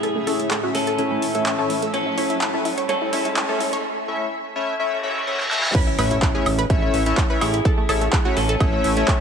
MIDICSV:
0, 0, Header, 1, 10, 480
1, 0, Start_track
1, 0, Key_signature, 3, "major"
1, 0, Tempo, 476190
1, 33, Time_signature, 4, 2, 24, 8
1, 9278, End_track
2, 0, Start_track
2, 0, Title_t, "Analog polysynth"
2, 0, Program_c, 0, 90
2, 273, Note_on_c, 0, 57, 82
2, 273, Note_on_c, 0, 61, 72
2, 273, Note_on_c, 0, 64, 74
2, 273, Note_on_c, 0, 73, 74
2, 273, Note_on_c, 0, 76, 90
2, 454, Note_off_c, 0, 57, 0
2, 454, Note_off_c, 0, 61, 0
2, 454, Note_off_c, 0, 64, 0
2, 454, Note_off_c, 0, 73, 0
2, 454, Note_off_c, 0, 76, 0
2, 639, Note_on_c, 0, 57, 80
2, 639, Note_on_c, 0, 61, 74
2, 639, Note_on_c, 0, 64, 72
2, 639, Note_on_c, 0, 73, 73
2, 639, Note_on_c, 0, 76, 88
2, 745, Note_off_c, 0, 57, 0
2, 745, Note_off_c, 0, 61, 0
2, 745, Note_off_c, 0, 64, 0
2, 745, Note_off_c, 0, 73, 0
2, 745, Note_off_c, 0, 76, 0
2, 993, Note_on_c, 0, 57, 96
2, 993, Note_on_c, 0, 61, 87
2, 993, Note_on_c, 0, 64, 88
2, 993, Note_on_c, 0, 73, 87
2, 993, Note_on_c, 0, 76, 103
2, 1328, Note_off_c, 0, 57, 0
2, 1328, Note_off_c, 0, 61, 0
2, 1328, Note_off_c, 0, 64, 0
2, 1328, Note_off_c, 0, 73, 0
2, 1328, Note_off_c, 0, 76, 0
2, 1358, Note_on_c, 0, 57, 97
2, 1358, Note_on_c, 0, 61, 87
2, 1358, Note_on_c, 0, 64, 92
2, 1358, Note_on_c, 0, 73, 88
2, 1358, Note_on_c, 0, 76, 108
2, 1533, Note_off_c, 0, 57, 0
2, 1533, Note_off_c, 0, 61, 0
2, 1533, Note_off_c, 0, 64, 0
2, 1533, Note_off_c, 0, 73, 0
2, 1533, Note_off_c, 0, 76, 0
2, 1598, Note_on_c, 0, 73, 77
2, 1598, Note_on_c, 0, 76, 96
2, 1599, Note_on_c, 0, 57, 87
2, 1599, Note_on_c, 0, 61, 77
2, 1599, Note_on_c, 0, 64, 77
2, 1773, Note_off_c, 0, 61, 0
2, 1773, Note_off_c, 0, 64, 0
2, 1773, Note_off_c, 0, 73, 0
2, 1773, Note_off_c, 0, 76, 0
2, 1774, Note_off_c, 0, 57, 0
2, 2194, Note_on_c, 0, 57, 75
2, 2194, Note_on_c, 0, 61, 71
2, 2194, Note_on_c, 0, 64, 69
2, 2194, Note_on_c, 0, 73, 68
2, 2194, Note_on_c, 0, 76, 84
2, 2374, Note_off_c, 0, 57, 0
2, 2374, Note_off_c, 0, 61, 0
2, 2374, Note_off_c, 0, 64, 0
2, 2374, Note_off_c, 0, 73, 0
2, 2374, Note_off_c, 0, 76, 0
2, 2558, Note_on_c, 0, 57, 75
2, 2558, Note_on_c, 0, 64, 67
2, 2558, Note_on_c, 0, 76, 81
2, 2559, Note_on_c, 0, 61, 66
2, 2559, Note_on_c, 0, 73, 68
2, 2665, Note_off_c, 0, 57, 0
2, 2665, Note_off_c, 0, 61, 0
2, 2665, Note_off_c, 0, 64, 0
2, 2665, Note_off_c, 0, 73, 0
2, 2665, Note_off_c, 0, 76, 0
2, 3154, Note_on_c, 0, 57, 80
2, 3154, Note_on_c, 0, 61, 69
2, 3154, Note_on_c, 0, 64, 72
2, 3154, Note_on_c, 0, 73, 72
2, 3154, Note_on_c, 0, 76, 89
2, 3334, Note_off_c, 0, 57, 0
2, 3334, Note_off_c, 0, 61, 0
2, 3334, Note_off_c, 0, 64, 0
2, 3334, Note_off_c, 0, 73, 0
2, 3334, Note_off_c, 0, 76, 0
2, 3519, Note_on_c, 0, 57, 74
2, 3519, Note_on_c, 0, 61, 66
2, 3519, Note_on_c, 0, 64, 67
2, 3519, Note_on_c, 0, 73, 66
2, 3519, Note_on_c, 0, 76, 81
2, 3625, Note_off_c, 0, 57, 0
2, 3625, Note_off_c, 0, 61, 0
2, 3625, Note_off_c, 0, 64, 0
2, 3625, Note_off_c, 0, 73, 0
2, 3625, Note_off_c, 0, 76, 0
2, 4113, Note_on_c, 0, 57, 80
2, 4113, Note_on_c, 0, 61, 72
2, 4113, Note_on_c, 0, 64, 73
2, 4113, Note_on_c, 0, 73, 74
2, 4113, Note_on_c, 0, 76, 89
2, 4294, Note_off_c, 0, 57, 0
2, 4294, Note_off_c, 0, 61, 0
2, 4294, Note_off_c, 0, 64, 0
2, 4294, Note_off_c, 0, 73, 0
2, 4294, Note_off_c, 0, 76, 0
2, 4593, Note_on_c, 0, 57, 83
2, 4593, Note_on_c, 0, 61, 78
2, 4593, Note_on_c, 0, 64, 77
2, 4593, Note_on_c, 0, 73, 78
2, 4593, Note_on_c, 0, 76, 93
2, 4773, Note_off_c, 0, 57, 0
2, 4773, Note_off_c, 0, 76, 0
2, 4774, Note_off_c, 0, 61, 0
2, 4774, Note_off_c, 0, 64, 0
2, 4774, Note_off_c, 0, 73, 0
2, 4833, Note_on_c, 0, 57, 82
2, 4833, Note_on_c, 0, 61, 77
2, 4833, Note_on_c, 0, 64, 76
2, 4833, Note_on_c, 0, 73, 78
2, 4833, Note_on_c, 0, 76, 95
2, 5014, Note_off_c, 0, 57, 0
2, 5014, Note_off_c, 0, 61, 0
2, 5014, Note_off_c, 0, 64, 0
2, 5014, Note_off_c, 0, 73, 0
2, 5014, Note_off_c, 0, 76, 0
2, 5073, Note_on_c, 0, 57, 83
2, 5073, Note_on_c, 0, 61, 78
2, 5073, Note_on_c, 0, 64, 79
2, 5073, Note_on_c, 0, 73, 76
2, 5073, Note_on_c, 0, 76, 95
2, 5253, Note_off_c, 0, 57, 0
2, 5253, Note_off_c, 0, 61, 0
2, 5253, Note_off_c, 0, 64, 0
2, 5253, Note_off_c, 0, 73, 0
2, 5253, Note_off_c, 0, 76, 0
2, 5313, Note_on_c, 0, 57, 81
2, 5313, Note_on_c, 0, 61, 78
2, 5313, Note_on_c, 0, 64, 77
2, 5313, Note_on_c, 0, 73, 77
2, 5313, Note_on_c, 0, 76, 90
2, 5494, Note_off_c, 0, 57, 0
2, 5494, Note_off_c, 0, 61, 0
2, 5494, Note_off_c, 0, 64, 0
2, 5494, Note_off_c, 0, 73, 0
2, 5494, Note_off_c, 0, 76, 0
2, 5553, Note_on_c, 0, 57, 89
2, 5553, Note_on_c, 0, 61, 81
2, 5553, Note_on_c, 0, 64, 82
2, 5553, Note_on_c, 0, 73, 83
2, 5553, Note_on_c, 0, 76, 93
2, 5734, Note_off_c, 0, 57, 0
2, 5734, Note_off_c, 0, 61, 0
2, 5734, Note_off_c, 0, 64, 0
2, 5734, Note_off_c, 0, 73, 0
2, 5734, Note_off_c, 0, 76, 0
2, 6033, Note_on_c, 0, 57, 82
2, 6033, Note_on_c, 0, 61, 75
2, 6033, Note_on_c, 0, 64, 74
2, 6033, Note_on_c, 0, 73, 71
2, 6033, Note_on_c, 0, 76, 88
2, 6214, Note_off_c, 0, 57, 0
2, 6214, Note_off_c, 0, 61, 0
2, 6214, Note_off_c, 0, 64, 0
2, 6214, Note_off_c, 0, 73, 0
2, 6214, Note_off_c, 0, 76, 0
2, 6399, Note_on_c, 0, 57, 81
2, 6399, Note_on_c, 0, 61, 74
2, 6399, Note_on_c, 0, 64, 75
2, 6399, Note_on_c, 0, 73, 74
2, 6399, Note_on_c, 0, 76, 92
2, 6505, Note_off_c, 0, 57, 0
2, 6505, Note_off_c, 0, 61, 0
2, 6505, Note_off_c, 0, 64, 0
2, 6505, Note_off_c, 0, 73, 0
2, 6505, Note_off_c, 0, 76, 0
2, 6753, Note_on_c, 0, 61, 87
2, 6754, Note_on_c, 0, 57, 98
2, 6754, Note_on_c, 0, 64, 89
2, 6754, Note_on_c, 0, 73, 89
2, 6754, Note_on_c, 0, 76, 110
2, 7088, Note_off_c, 0, 61, 0
2, 7089, Note_off_c, 0, 57, 0
2, 7089, Note_off_c, 0, 64, 0
2, 7089, Note_off_c, 0, 73, 0
2, 7089, Note_off_c, 0, 76, 0
2, 7119, Note_on_c, 0, 57, 97
2, 7119, Note_on_c, 0, 61, 92
2, 7119, Note_on_c, 0, 64, 91
2, 7119, Note_on_c, 0, 73, 89
2, 7119, Note_on_c, 0, 76, 104
2, 7293, Note_off_c, 0, 57, 0
2, 7293, Note_off_c, 0, 73, 0
2, 7293, Note_off_c, 0, 76, 0
2, 7294, Note_off_c, 0, 61, 0
2, 7294, Note_off_c, 0, 64, 0
2, 7359, Note_on_c, 0, 57, 86
2, 7359, Note_on_c, 0, 61, 76
2, 7359, Note_on_c, 0, 64, 78
2, 7359, Note_on_c, 0, 73, 79
2, 7359, Note_on_c, 0, 76, 94
2, 7534, Note_off_c, 0, 57, 0
2, 7534, Note_off_c, 0, 61, 0
2, 7534, Note_off_c, 0, 64, 0
2, 7534, Note_off_c, 0, 73, 0
2, 7534, Note_off_c, 0, 76, 0
2, 7954, Note_on_c, 0, 57, 80
2, 7954, Note_on_c, 0, 61, 74
2, 7954, Note_on_c, 0, 64, 72
2, 7954, Note_on_c, 0, 73, 73
2, 7954, Note_on_c, 0, 76, 90
2, 8134, Note_off_c, 0, 57, 0
2, 8134, Note_off_c, 0, 61, 0
2, 8134, Note_off_c, 0, 64, 0
2, 8134, Note_off_c, 0, 73, 0
2, 8134, Note_off_c, 0, 76, 0
2, 8319, Note_on_c, 0, 57, 81
2, 8319, Note_on_c, 0, 61, 74
2, 8319, Note_on_c, 0, 64, 78
2, 8319, Note_on_c, 0, 73, 75
2, 8319, Note_on_c, 0, 76, 92
2, 8425, Note_off_c, 0, 57, 0
2, 8425, Note_off_c, 0, 61, 0
2, 8425, Note_off_c, 0, 64, 0
2, 8425, Note_off_c, 0, 73, 0
2, 8425, Note_off_c, 0, 76, 0
2, 8673, Note_on_c, 0, 57, 98
2, 8673, Note_on_c, 0, 61, 92
2, 8673, Note_on_c, 0, 64, 88
2, 8673, Note_on_c, 0, 73, 91
2, 8673, Note_on_c, 0, 76, 109
2, 9008, Note_off_c, 0, 57, 0
2, 9008, Note_off_c, 0, 61, 0
2, 9008, Note_off_c, 0, 64, 0
2, 9008, Note_off_c, 0, 73, 0
2, 9008, Note_off_c, 0, 76, 0
2, 9039, Note_on_c, 0, 57, 101
2, 9039, Note_on_c, 0, 61, 91
2, 9039, Note_on_c, 0, 64, 90
2, 9039, Note_on_c, 0, 73, 94
2, 9039, Note_on_c, 0, 76, 110
2, 9213, Note_off_c, 0, 57, 0
2, 9214, Note_off_c, 0, 61, 0
2, 9214, Note_off_c, 0, 64, 0
2, 9214, Note_off_c, 0, 73, 0
2, 9214, Note_off_c, 0, 76, 0
2, 9278, End_track
3, 0, Start_track
3, 0, Title_t, "Clean electric guitar"
3, 0, Program_c, 1, 27
3, 0, Note_on_c, 1, 64, 69
3, 0, Note_on_c, 1, 68, 79
3, 661, Note_off_c, 1, 64, 0
3, 661, Note_off_c, 1, 68, 0
3, 753, Note_on_c, 1, 61, 76
3, 756, Note_on_c, 1, 69, 87
3, 1861, Note_off_c, 1, 61, 0
3, 1861, Note_off_c, 1, 69, 0
3, 1951, Note_on_c, 1, 61, 72
3, 1955, Note_on_c, 1, 69, 78
3, 2821, Note_off_c, 1, 61, 0
3, 2821, Note_off_c, 1, 69, 0
3, 2912, Note_on_c, 1, 61, 70
3, 2917, Note_on_c, 1, 69, 77
3, 3781, Note_off_c, 1, 69, 0
3, 3782, Note_off_c, 1, 61, 0
3, 5791, Note_on_c, 1, 61, 78
3, 5796, Note_on_c, 1, 64, 87
3, 6661, Note_off_c, 1, 61, 0
3, 6661, Note_off_c, 1, 64, 0
3, 7472, Note_on_c, 1, 64, 84
3, 7476, Note_on_c, 1, 68, 82
3, 8341, Note_off_c, 1, 64, 0
3, 8341, Note_off_c, 1, 68, 0
3, 8432, Note_on_c, 1, 61, 73
3, 8436, Note_on_c, 1, 69, 86
3, 9278, Note_off_c, 1, 61, 0
3, 9278, Note_off_c, 1, 69, 0
3, 9278, End_track
4, 0, Start_track
4, 0, Title_t, "Synth pluck"
4, 0, Program_c, 2, 84
4, 33, Note_on_c, 2, 69, 98
4, 98, Note_off_c, 2, 69, 0
4, 158, Note_on_c, 2, 57, 64
4, 218, Note_off_c, 2, 57, 0
4, 273, Note_on_c, 2, 69, 97
4, 338, Note_off_c, 2, 69, 0
4, 398, Note_on_c, 2, 57, 68
4, 458, Note_off_c, 2, 57, 0
4, 513, Note_on_c, 2, 57, 63
4, 578, Note_off_c, 2, 57, 0
4, 638, Note_on_c, 2, 66, 85
4, 698, Note_off_c, 2, 66, 0
4, 753, Note_on_c, 2, 57, 63
4, 818, Note_off_c, 2, 57, 0
4, 878, Note_on_c, 2, 69, 91
4, 938, Note_off_c, 2, 69, 0
4, 993, Note_on_c, 2, 57, 66
4, 1058, Note_off_c, 2, 57, 0
4, 1118, Note_on_c, 2, 57, 65
4, 1178, Note_off_c, 2, 57, 0
4, 1358, Note_on_c, 2, 57, 67
4, 1418, Note_off_c, 2, 57, 0
4, 1473, Note_on_c, 2, 57, 64
4, 1538, Note_off_c, 2, 57, 0
4, 1598, Note_on_c, 2, 69, 95
4, 1658, Note_off_c, 2, 69, 0
4, 1713, Note_on_c, 2, 57, 66
4, 1779, Note_off_c, 2, 57, 0
4, 1839, Note_on_c, 2, 57, 69
4, 1898, Note_off_c, 2, 57, 0
4, 1953, Note_on_c, 2, 73, 91
4, 2018, Note_off_c, 2, 73, 0
4, 2078, Note_on_c, 2, 64, 59
4, 2138, Note_off_c, 2, 64, 0
4, 2193, Note_on_c, 2, 73, 90
4, 2259, Note_off_c, 2, 73, 0
4, 2319, Note_on_c, 2, 64, 59
4, 2378, Note_off_c, 2, 64, 0
4, 2433, Note_on_c, 2, 64, 58
4, 2499, Note_off_c, 2, 64, 0
4, 2559, Note_on_c, 2, 69, 82
4, 2618, Note_off_c, 2, 69, 0
4, 2673, Note_on_c, 2, 64, 62
4, 2739, Note_off_c, 2, 64, 0
4, 2798, Note_on_c, 2, 73, 87
4, 2858, Note_off_c, 2, 73, 0
4, 2913, Note_on_c, 2, 73, 99
4, 2978, Note_off_c, 2, 73, 0
4, 3038, Note_on_c, 2, 64, 65
4, 3098, Note_off_c, 2, 64, 0
4, 3154, Note_on_c, 2, 73, 91
4, 3219, Note_off_c, 2, 73, 0
4, 3279, Note_on_c, 2, 64, 61
4, 3338, Note_off_c, 2, 64, 0
4, 3394, Note_on_c, 2, 64, 62
4, 3459, Note_off_c, 2, 64, 0
4, 3518, Note_on_c, 2, 69, 88
4, 3578, Note_off_c, 2, 69, 0
4, 3633, Note_on_c, 2, 64, 59
4, 3699, Note_off_c, 2, 64, 0
4, 3759, Note_on_c, 2, 73, 92
4, 3818, Note_off_c, 2, 73, 0
4, 5793, Note_on_c, 2, 71, 104
4, 5859, Note_off_c, 2, 71, 0
4, 5918, Note_on_c, 2, 64, 66
4, 5978, Note_off_c, 2, 64, 0
4, 6033, Note_on_c, 2, 71, 98
4, 6099, Note_off_c, 2, 71, 0
4, 6158, Note_on_c, 2, 64, 67
4, 6218, Note_off_c, 2, 64, 0
4, 6274, Note_on_c, 2, 64, 61
4, 6339, Note_off_c, 2, 64, 0
4, 6399, Note_on_c, 2, 68, 91
4, 6458, Note_off_c, 2, 68, 0
4, 6514, Note_on_c, 2, 64, 66
4, 6579, Note_off_c, 2, 64, 0
4, 6639, Note_on_c, 2, 71, 97
4, 6699, Note_off_c, 2, 71, 0
4, 6753, Note_on_c, 2, 64, 68
4, 6819, Note_off_c, 2, 64, 0
4, 6878, Note_on_c, 2, 64, 68
4, 6938, Note_off_c, 2, 64, 0
4, 7119, Note_on_c, 2, 64, 68
4, 7178, Note_off_c, 2, 64, 0
4, 7233, Note_on_c, 2, 64, 65
4, 7298, Note_off_c, 2, 64, 0
4, 7358, Note_on_c, 2, 71, 93
4, 7418, Note_off_c, 2, 71, 0
4, 7473, Note_on_c, 2, 64, 64
4, 7539, Note_off_c, 2, 64, 0
4, 7598, Note_on_c, 2, 64, 70
4, 7658, Note_off_c, 2, 64, 0
4, 7713, Note_on_c, 2, 69, 100
4, 7778, Note_off_c, 2, 69, 0
4, 7838, Note_on_c, 2, 57, 65
4, 7898, Note_off_c, 2, 57, 0
4, 7953, Note_on_c, 2, 69, 97
4, 8018, Note_off_c, 2, 69, 0
4, 8078, Note_on_c, 2, 57, 65
4, 8138, Note_off_c, 2, 57, 0
4, 8193, Note_on_c, 2, 57, 60
4, 8259, Note_off_c, 2, 57, 0
4, 8318, Note_on_c, 2, 66, 92
4, 8378, Note_off_c, 2, 66, 0
4, 8433, Note_on_c, 2, 57, 65
4, 8498, Note_off_c, 2, 57, 0
4, 8558, Note_on_c, 2, 69, 94
4, 8618, Note_off_c, 2, 69, 0
4, 8673, Note_on_c, 2, 57, 68
4, 8739, Note_off_c, 2, 57, 0
4, 8799, Note_on_c, 2, 57, 66
4, 8859, Note_off_c, 2, 57, 0
4, 9039, Note_on_c, 2, 57, 67
4, 9099, Note_off_c, 2, 57, 0
4, 9153, Note_on_c, 2, 57, 65
4, 9219, Note_off_c, 2, 57, 0
4, 9278, End_track
5, 0, Start_track
5, 0, Title_t, "Ambient pad"
5, 0, Program_c, 3, 92
5, 0, Note_on_c, 3, 45, 78
5, 0, Note_on_c, 3, 57, 74
5, 0, Note_on_c, 3, 61, 73
5, 0, Note_on_c, 3, 64, 71
5, 0, Note_on_c, 3, 76, 87
5, 3833, Note_off_c, 3, 45, 0
5, 3833, Note_off_c, 3, 57, 0
5, 3833, Note_off_c, 3, 61, 0
5, 3833, Note_off_c, 3, 64, 0
5, 3833, Note_off_c, 3, 76, 0
5, 5794, Note_on_c, 3, 57, 82
5, 5794, Note_on_c, 3, 61, 73
5, 5794, Note_on_c, 3, 64, 92
5, 9278, Note_off_c, 3, 57, 0
5, 9278, Note_off_c, 3, 61, 0
5, 9278, Note_off_c, 3, 64, 0
5, 9278, End_track
6, 0, Start_track
6, 0, Title_t, "Analog synth bass"
6, 0, Program_c, 4, 38
6, 6033, Note_on_c, 4, 33, 98
6, 6227, Note_off_c, 4, 33, 0
6, 6513, Note_on_c, 4, 33, 102
6, 6707, Note_off_c, 4, 33, 0
6, 6753, Note_on_c, 4, 33, 87
6, 6947, Note_off_c, 4, 33, 0
6, 6993, Note_on_c, 4, 33, 80
6, 7187, Note_off_c, 4, 33, 0
6, 7473, Note_on_c, 4, 33, 102
6, 7667, Note_off_c, 4, 33, 0
6, 7953, Note_on_c, 4, 33, 99
6, 8147, Note_off_c, 4, 33, 0
6, 8433, Note_on_c, 4, 33, 105
6, 8627, Note_off_c, 4, 33, 0
6, 8674, Note_on_c, 4, 33, 87
6, 8867, Note_off_c, 4, 33, 0
6, 8913, Note_on_c, 4, 33, 82
6, 9107, Note_off_c, 4, 33, 0
6, 9278, End_track
7, 0, Start_track
7, 0, Title_t, "Impact"
7, 0, Program_c, 5, 103
7, 5793, Note_on_c, 5, 60, 78
7, 7713, Note_off_c, 5, 60, 0
7, 9278, End_track
8, 0, Start_track
8, 0, Title_t, "Reverse cymbal"
8, 0, Program_c, 6, 119
8, 4833, Note_on_c, 6, 60, 80
8, 5793, Note_off_c, 6, 60, 0
8, 9278, End_track
9, 0, Start_track
9, 0, Title_t, "Riser"
9, 0, Program_c, 7, 103
9, 0, Note_on_c, 7, 60, 80
9, 3873, Note_off_c, 7, 60, 0
9, 9278, End_track
10, 0, Start_track
10, 0, Title_t, "Drums"
10, 33, Note_on_c, 9, 42, 53
10, 134, Note_off_c, 9, 42, 0
10, 273, Note_on_c, 9, 46, 110
10, 374, Note_off_c, 9, 46, 0
10, 398, Note_on_c, 9, 42, 66
10, 499, Note_off_c, 9, 42, 0
10, 512, Note_on_c, 9, 39, 122
10, 513, Note_on_c, 9, 42, 52
10, 613, Note_off_c, 9, 39, 0
10, 614, Note_off_c, 9, 42, 0
10, 753, Note_on_c, 9, 46, 106
10, 854, Note_off_c, 9, 46, 0
10, 878, Note_on_c, 9, 42, 66
10, 979, Note_off_c, 9, 42, 0
10, 993, Note_on_c, 9, 42, 52
10, 1094, Note_off_c, 9, 42, 0
10, 1233, Note_on_c, 9, 46, 115
10, 1334, Note_off_c, 9, 46, 0
10, 1358, Note_on_c, 9, 42, 64
10, 1459, Note_off_c, 9, 42, 0
10, 1472, Note_on_c, 9, 39, 123
10, 1473, Note_on_c, 9, 42, 54
10, 1573, Note_off_c, 9, 39, 0
10, 1574, Note_off_c, 9, 42, 0
10, 1713, Note_on_c, 9, 46, 112
10, 1814, Note_off_c, 9, 46, 0
10, 1838, Note_on_c, 9, 42, 68
10, 1939, Note_off_c, 9, 42, 0
10, 1953, Note_on_c, 9, 42, 50
10, 2054, Note_off_c, 9, 42, 0
10, 2193, Note_on_c, 9, 46, 114
10, 2294, Note_off_c, 9, 46, 0
10, 2319, Note_on_c, 9, 42, 61
10, 2419, Note_off_c, 9, 42, 0
10, 2432, Note_on_c, 9, 39, 118
10, 2433, Note_on_c, 9, 42, 52
10, 2533, Note_off_c, 9, 39, 0
10, 2534, Note_off_c, 9, 42, 0
10, 2673, Note_on_c, 9, 46, 111
10, 2774, Note_off_c, 9, 46, 0
10, 2798, Note_on_c, 9, 42, 65
10, 2899, Note_off_c, 9, 42, 0
10, 2913, Note_on_c, 9, 42, 52
10, 3014, Note_off_c, 9, 42, 0
10, 3153, Note_on_c, 9, 46, 114
10, 3254, Note_off_c, 9, 46, 0
10, 3279, Note_on_c, 9, 42, 64
10, 3379, Note_off_c, 9, 42, 0
10, 3392, Note_on_c, 9, 39, 123
10, 3393, Note_on_c, 9, 42, 51
10, 3493, Note_off_c, 9, 39, 0
10, 3494, Note_off_c, 9, 42, 0
10, 3633, Note_on_c, 9, 46, 112
10, 3734, Note_off_c, 9, 46, 0
10, 3759, Note_on_c, 9, 42, 65
10, 3859, Note_off_c, 9, 42, 0
10, 5439, Note_on_c, 9, 38, 50
10, 5539, Note_off_c, 9, 38, 0
10, 5553, Note_on_c, 9, 38, 80
10, 5654, Note_off_c, 9, 38, 0
10, 5679, Note_on_c, 9, 38, 78
10, 5779, Note_off_c, 9, 38, 0
10, 5793, Note_on_c, 9, 36, 123
10, 5794, Note_on_c, 9, 42, 55
10, 5794, Note_on_c, 9, 49, 99
10, 5894, Note_off_c, 9, 36, 0
10, 5894, Note_off_c, 9, 42, 0
10, 5894, Note_off_c, 9, 49, 0
10, 6034, Note_on_c, 9, 46, 104
10, 6034, Note_on_c, 9, 76, 65
10, 6134, Note_off_c, 9, 46, 0
10, 6134, Note_off_c, 9, 76, 0
10, 6159, Note_on_c, 9, 42, 67
10, 6259, Note_off_c, 9, 42, 0
10, 6272, Note_on_c, 9, 39, 118
10, 6273, Note_on_c, 9, 36, 109
10, 6273, Note_on_c, 9, 42, 53
10, 6373, Note_off_c, 9, 39, 0
10, 6374, Note_off_c, 9, 36, 0
10, 6374, Note_off_c, 9, 42, 0
10, 6513, Note_on_c, 9, 46, 102
10, 6513, Note_on_c, 9, 76, 78
10, 6614, Note_off_c, 9, 46, 0
10, 6614, Note_off_c, 9, 76, 0
10, 6639, Note_on_c, 9, 42, 72
10, 6739, Note_off_c, 9, 42, 0
10, 6753, Note_on_c, 9, 36, 115
10, 6753, Note_on_c, 9, 42, 55
10, 6854, Note_off_c, 9, 36, 0
10, 6854, Note_off_c, 9, 42, 0
10, 6993, Note_on_c, 9, 46, 116
10, 7094, Note_off_c, 9, 46, 0
10, 7118, Note_on_c, 9, 42, 69
10, 7219, Note_off_c, 9, 42, 0
10, 7232, Note_on_c, 9, 39, 127
10, 7233, Note_on_c, 9, 36, 104
10, 7233, Note_on_c, 9, 42, 54
10, 7333, Note_off_c, 9, 39, 0
10, 7334, Note_off_c, 9, 36, 0
10, 7334, Note_off_c, 9, 42, 0
10, 7473, Note_on_c, 9, 46, 105
10, 7473, Note_on_c, 9, 76, 62
10, 7574, Note_off_c, 9, 46, 0
10, 7574, Note_off_c, 9, 76, 0
10, 7598, Note_on_c, 9, 42, 71
10, 7699, Note_off_c, 9, 42, 0
10, 7713, Note_on_c, 9, 36, 127
10, 7713, Note_on_c, 9, 42, 55
10, 7814, Note_off_c, 9, 36, 0
10, 7814, Note_off_c, 9, 42, 0
10, 7953, Note_on_c, 9, 46, 110
10, 7953, Note_on_c, 9, 76, 63
10, 8054, Note_off_c, 9, 46, 0
10, 8054, Note_off_c, 9, 76, 0
10, 8078, Note_on_c, 9, 42, 65
10, 8179, Note_off_c, 9, 42, 0
10, 8192, Note_on_c, 9, 39, 123
10, 8193, Note_on_c, 9, 36, 111
10, 8193, Note_on_c, 9, 42, 54
10, 8293, Note_off_c, 9, 39, 0
10, 8294, Note_off_c, 9, 36, 0
10, 8294, Note_off_c, 9, 42, 0
10, 8433, Note_on_c, 9, 46, 110
10, 8534, Note_off_c, 9, 46, 0
10, 8558, Note_on_c, 9, 42, 71
10, 8659, Note_off_c, 9, 42, 0
10, 8673, Note_on_c, 9, 36, 122
10, 8673, Note_on_c, 9, 42, 53
10, 8673, Note_on_c, 9, 76, 74
10, 8774, Note_off_c, 9, 36, 0
10, 8774, Note_off_c, 9, 42, 0
10, 8774, Note_off_c, 9, 76, 0
10, 8913, Note_on_c, 9, 46, 120
10, 9014, Note_off_c, 9, 46, 0
10, 9038, Note_on_c, 9, 42, 66
10, 9139, Note_off_c, 9, 42, 0
10, 9152, Note_on_c, 9, 39, 125
10, 9153, Note_on_c, 9, 36, 106
10, 9153, Note_on_c, 9, 42, 55
10, 9253, Note_off_c, 9, 39, 0
10, 9254, Note_off_c, 9, 36, 0
10, 9254, Note_off_c, 9, 42, 0
10, 9278, End_track
0, 0, End_of_file